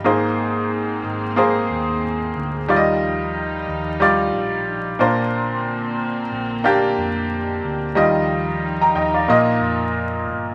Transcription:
0.04 1.00 G#1 medium
0.04 1.00 G#2 medium
0.04 2.66 G#3 medium
0.04 1.26 A#3 medium
0.04 2.66 A#3 medium
0.04 2.66 C4 medium
0.04 1.26 G#4 medium
0.04 1.27 C5 medium
1.04 1.66 G#1 medium
1.36 2.58 A#3 medium
1.36 2.58 G#4 medium
1.36 2.59 C5 medium
1.69 2.32 D#2 medium
2.36 2.67 D2 medium
2.68 3.64 D#2 medium
2.68 3.64 D#3 medium
2.68 4.97 F3 medium
2.68 4.97 G3 medium
2.68 3.90 G3 medium
2.68 4.97 D#4 medium
2.68 3.90 F4 medium
2.68 2.77 D5 medium
2.76 3.94 D#5 medium
3.68 4.30 D#2 medium
4.00 4.99 G3 medium
4.00 4.99 F4 medium
4.00 5.00 D5 medium
4.34 4.96 A#1 medium
4.99 6.28 A#1 medium
4.99 5.94 A#2 medium
4.99 7.93 D3 medium
4.99 6.21 A#3 medium
4.99 7.93 A#3 medium
4.99 7.93 C4 medium
4.99 6.21 D4 medium
4.99 6.21 C5 medium
6.32 6.93 A#1 medium
6.64 7.85 A#3 medium
6.64 7.86 D4 medium
6.64 7.86 G4 medium
6.97 7.59 F2 medium
7.64 7.94 D2 medium
7.95 8.91 D#2 medium
7.95 8.91 D#3 medium
7.95 10.55 F3 medium
7.95 9.17 G3 medium
7.95 9.26 G3 medium
7.95 10.55 D#4 medium
7.95 9.17 F4 medium
7.95 8.62 D#5 medium
8.81 8.94 G5 soft
8.81 8.95 A#5 medium
8.95 9.25 D#2 medium
8.95 9.13 D#5 medium
8.95 9.13 G5 medium
9.14 9.45 D5 soft
9.14 9.45 F5 medium
9.26 9.59 A#1 medium
9.26 10.23 A#2 medium
9.26 10.55 A#3 medium
9.26 10.49 A#3 medium
9.26 10.50 F4 medium
9.26 10.50 D#5 medium
9.61 10.28 F2 medium
10.27 10.55 G1 medium

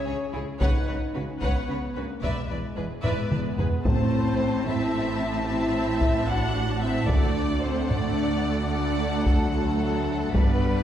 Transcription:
0.00 0.61 C#4 medium
0.05 0.15 C#2 soft
0.05 0.15 C#3 soft
0.05 0.13 G#4 soft
0.05 0.15 G#4 soft
0.05 0.16 C#5 soft
0.32 0.42 C#2 soft
0.32 0.42 C#3 soft
0.32 0.40 E4 medium
0.32 0.42 G#4 soft
0.60 0.68 C#2 medium
0.60 0.69 C#3 medium
0.60 1.14 D#4 medium
0.60 0.86 B4 medium
0.60 0.86 C#5 medium
0.60 0.86 F#5 medium
0.60 taiko medium
0.88 0.96 C#2 soft
0.88 0.96 C#3 soft
0.88 0.96 B4 soft
0.88 0.96 C#5 soft
1.14 1.23 C#2 soft
1.14 1.23 C#3 soft
1.14 1.42 C#4 medium
1.14 1.22 F#4 soft
1.14 1.22 B4 soft
1.14 1.23 B4 soft
1.42 1.50 C#2 medium
1.42 1.50 C#3 medium
1.42 1.96 B3 medium
1.42 1.67 B4 medium
1.42 1.68 C#5 soft
1.42 1.67 F#5 medium
1.42 taiko medium
1.69 1.77 C#2 soft
1.69 1.77 C#3 soft
1.69 1.77 B4 soft
1.69 1.77 C#5 soft
1.95 2.04 C#2 soft
1.95 2.04 C#3 soft
1.95 2.23 A#3 medium
1.95 2.04 F#4 soft
1.95 2.03 B4 soft
2.23 2.31 E1 medium
2.23 2.31 E2 soft
2.23 3.04 G#3 medium
2.23 2.48 B4 soft
2.23 2.48 D5 medium
2.23 2.48 E5 medium
2.23 taiko medium
2.48 2.59 E1 soft
2.48 2.58 E2 soft
2.48 2.56 B4 soft
2.48 2.58 B4 soft
2.48 2.58 D5 soft
2.76 2.85 E1 soft
2.76 2.85 E2 soft
2.76 2.84 G#4 soft
2.76 2.85 B4 soft
3.03 3.12 E1 soft
3.03 3.12 E2 medium
3.03 3.81 G#3 medium
3.03 3.81 B3 medium
3.03 3.29 B4 medium
3.03 3.29 D5 medium
3.03 3.29 E5 soft
3.03 taiko low-mid medium
3.30 3.38 E1 soft
3.30 3.39 E2 soft
3.30 3.39 B4 soft
3.30 3.40 B4 soft
3.30 3.39 D5 soft
3.30 taiko mid medium
3.58 3.66 E1 soft
3.58 3.66 E2 soft
3.58 3.67 G#4 soft
3.58 3.66 B4 soft
3.58 3.67 B4 soft
3.58 taiko low medium
3.84 7.05 A1 medium
3.84 7.06 A2 medium
3.84 4.63 A2 medium
3.84 4.65 A3 medium
3.84 4.66 C4 medium
3.84 4.67 C5 medium
3.84 7.06 A5 medium
3.84 taiko medium
4.65 5.46 C4 medium
4.65 5.30 E4 medium
4.65 5.46 E5 medium
4.65 taiko low-mid soft
5.47 6.27 C4 medium
5.47 6.26 E4 medium
5.47 6.27 E5 medium
6.01 taiko medium
6.27 6.82 D4 medium
6.27 6.83 F#4 medium
6.27 6.82 F#5 medium
6.81 7.09 C4 medium
6.81 7.09 E4 medium
6.81 7.08 E5 medium
7.08 10.30 D2 medium
7.08 7.61 A3 medium
7.08 7.63 D4 medium
7.08 7.63 D5 medium
7.08 10.30 F#5 medium
7.08 taiko medium
7.62 7.88 A3 medium
7.62 7.90 C4 medium
7.62 7.90 C5 medium
7.90 8.70 A3 medium
7.90 8.70 D4 medium
7.90 8.70 D5 medium
7.90 taiko low-mid medium
8.71 9.24 A3 medium
8.71 9.25 D4 medium
8.71 9.24 D5 medium
9.25 9.51 F#3 medium
9.25 9.52 A3 medium
9.25 9.52 A4 medium
9.25 taiko medium
9.52 10.32 F#3 medium
9.52 10.32 A3 medium
9.52 10.32 A4 medium
10.34 10.83 G1 medium
10.34 10.83 G2 medium
10.34 10.83 G3 medium
10.34 10.83 B3 medium
10.34 10.83 B4 medium
10.34 10.83 D5 medium
10.34 taiko loud

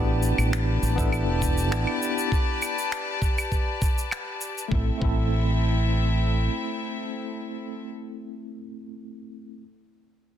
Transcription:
0.00 0.32 A1 loud
0.00 0.93 B3 medium
0.00 0.94 D4 medium
0.00 0.95 E4 medium
0.00 0.95 G4 medium
0.00 4.68 G4 medium
0.00 4.68 B4 medium
0.00 4.68 D5 medium
0.00 4.68 A5 medium
0.23 shaker medium
0.38 0.76 A1 medium
0.38 claves medium
0.38 shaker medium
0.53 finger snap loud
0.53 shaker soft
0.82 1.28 A1 medium
0.82 shaker medium
0.96 1.67 B3 medium
0.96 1.68 D4 medium
0.96 1.69 E4 medium
0.96 kick loud
0.96 shaker medium
1.00 1.69 A4 loud
1.12 claves medium
1.12 shaker soft
1.28 1.72 E1 loud
1.42 kick medium
1.42 shaker medium
1.58 shaker medium
1.71 1.84 A1 medium
1.71 2.28 B3 medium
1.71 2.28 D4 medium
1.71 2.29 E4 medium
1.71 2.29 G4 medium
1.71 finger snap medium
1.71 shaker soft
1.87 claves medium
2.02 shaker medium
2.18 shaker medium
2.32 kick loud
2.32 shaker soft
2.62 claves medium
2.62 shaker medium
2.78 shaker medium
2.92 finger snap loud
2.92 shaker medium
3.22 kick medium
3.22 shaker medium
3.38 claves medium
3.38 shaker medium
3.52 kick medium
3.52 shaker soft
3.82 kick loud
3.82 shaker medium
3.98 shaker medium
4.11 finger snap medium
4.11 claves medium
4.11 shaker soft
4.41 shaker medium
4.58 shaker medium
4.68 4.89 A1 medium
4.68 4.87 A3 medium
4.68 4.89 C4 medium
4.68 7.87 C4 medium
4.68 7.87 E4 medium
4.68 7.87 A4 medium
4.68 7.87 E5 medium
4.68 kick loud
4.73 4.90 E4 medium
4.73 4.91 A4 medium
4.98 6.48 A1 medium
4.98 8.56 A3 medium
4.98 8.57 C4 medium
4.98 kick loud
5.02 8.58 E4 medium
5.02 8.59 A4 medium

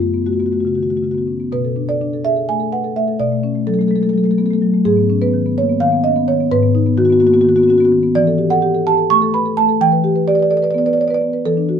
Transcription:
0.00 1.48 F#2 medium
0.00 0.21 A3 soft
0.00 0.25 F4 medium
0.14 0.34 B3 soft
0.26 0.47 A3 soft
0.26 0.33 F#4 medium
0.33 0.40 F#4 soft
0.40 0.59 B3 soft
0.40 0.46 F#4 soft
0.46 0.53 F#4 soft
0.52 0.72 A3 soft
0.52 0.60 F#4 soft
0.60 0.67 F#4 soft
0.65 0.85 C#3 soft
0.65 0.75 F#4 soft
0.75 0.90 D#3 soft
0.75 0.83 F#4 soft
0.83 0.90 F#4 soft
0.90 1.10 A3 soft
0.90 0.97 F#4 soft
0.97 1.04 F#4 soft
1.03 1.22 C#3 soft
1.03 1.11 F#4 soft
1.11 1.35 B3 soft
1.11 1.18 F#4 soft
1.18 1.23 F#4 soft
1.27 1.40 C#4 soft
1.40 1.52 B3 soft
1.52 3.16 B2 medium
1.52 1.87 B4 medium
1.65 1.84 A4 soft
1.76 1.96 D4 soft
1.89 2.08 A4 soft
1.89 2.23 D5 medium
2.01 2.20 D4 medium
2.13 2.32 A4 soft
2.25 2.37 G#4 soft
2.25 2.47 E5 loud
2.36 2.55 A4 soft
2.49 2.68 A3 soft
2.49 2.71 G#5 medium
2.60 2.79 A4 soft
2.72 2.84 B4 soft
2.72 2.95 F#5 medium
2.84 3.03 A4 soft
2.96 3.15 A3 soft
2.96 3.19 E5 medium
3.08 3.20 A4 soft
3.20 4.82 B2 medium
3.20 3.65 D5 medium
3.32 3.51 A3 soft
3.44 3.62 C#4 medium
3.55 3.74 A3 soft
3.67 3.86 F#3 medium
3.67 3.74 A4 medium
3.74 3.81 A4 medium
3.79 3.98 A3 soft
3.79 3.88 A4 medium
3.88 4.03 G#3 medium
3.88 3.96 A4 medium
3.96 4.03 A4 medium
4.02 4.21 A3 medium
4.02 4.09 A4 medium
4.09 4.17 A4 medium
4.13 4.33 F#3 medium
4.17 4.24 A4 medium
4.24 4.45 A3 medium
4.24 4.31 A4 medium
4.31 4.38 A4 medium
4.38 4.50 B3 soft
4.38 4.46 A4 medium
4.46 4.53 A4 medium
4.51 4.70 A3 medium
4.51 4.58 A4 medium
4.62 4.81 F#3 soft
4.74 4.86 A3 medium
4.85 6.48 G#2 medium
4.85 5.20 G#4 medium
4.97 5.16 B3 soft
5.10 5.29 C#4 medium
5.21 5.41 B3 medium
5.21 5.56 B4 medium
5.34 5.53 D#3 medium
5.46 5.65 B3 medium
5.58 5.70 A#3 medium
5.58 5.81 C#5 medium
5.69 5.89 B3 soft
5.80 6.00 D#3 medium
5.80 6.04 F5 loud
5.92 6.12 B3 medium
6.04 6.16 C#4 soft
6.04 6.27 D#5 medium
6.16 6.35 B3 medium
6.28 6.47 D#3 medium
6.28 6.51 C#5 medium
6.40 6.52 B3 medium
6.51 8.12 G#2 medium
6.51 6.97 B4 loud
6.63 6.82 B3 medium
6.75 6.94 D#4 medium
6.87 7.06 B3 medium
6.98 7.18 D#3 medium
6.98 7.05 F#4 medium
7.05 7.13 F#4 medium
7.10 7.29 B3 medium
7.10 7.20 F#4 medium
7.20 7.34 A#3 medium
7.20 7.27 F#4 medium
7.27 7.34 F#4 medium
7.33 7.53 B3 medium
7.33 7.41 F#4 medium
7.41 7.65 D#3 medium
7.41 7.49 F#4 medium
7.49 7.56 F#4 medium
7.56 7.77 B3 medium
7.56 7.63 F#4 medium
7.63 7.70 F#4 medium
7.68 7.81 C#4 medium
7.68 7.78 F#4 medium
7.78 8.00 B3 medium
7.78 7.85 F#4 medium
7.85 7.89 F#4 medium
7.92 8.11 D#3 medium
8.03 8.16 B3 medium
8.15 9.76 E3 medium
8.15 8.50 D5 loud
8.27 8.46 A4 medium
8.38 8.58 G4 medium
8.50 8.70 A4 medium
8.50 8.85 F#5 loud
8.62 8.82 G4 medium
8.74 8.94 A4 medium
8.87 8.99 G4 medium
8.87 9.10 A5 loud
8.98 9.17 A4 medium
9.10 9.29 A3 medium
9.10 9.33 C#6 loud
9.22 9.41 A4 medium
9.34 9.46 B4 medium
9.34 9.57 B5 medium
9.46 9.64 A4 medium
9.57 9.76 A3 medium
9.57 9.80 A5 loud
9.69 9.81 A4 medium
9.81 11.41 E3 medium
9.81 10.26 G5 loud
9.92 10.11 B4 medium
10.04 10.23 G4 medium
10.16 10.34 B4 medium
10.28 10.46 G4 medium
10.28 10.35 D5 medium
10.35 10.43 D5 medium
10.39 10.58 B4 medium
10.39 10.51 D5 medium
10.51 10.63 A4 medium
10.51 10.57 D5 medium
10.57 10.64 D5 medium
10.62 10.81 B4 medium
10.62 10.71 D5 medium
10.71 10.93 B3 medium
10.71 10.78 D5 medium
10.78 10.86 D5 medium
10.86 11.05 B4 medium
10.86 10.93 D5 medium
10.93 11.01 D5 medium
10.97 11.10 C#5 medium
10.97 11.08 D5 medium
11.08 11.29 B4 medium
11.08 11.14 D5 medium
11.14 11.18 D5 medium
11.21 11.40 B3 soft
11.33 11.45 B4 medium
11.46 11.80 E3 medium
11.46 11.80 A4 loud
11.57 11.76 D4 medium
11.69 11.80 F#4 medium

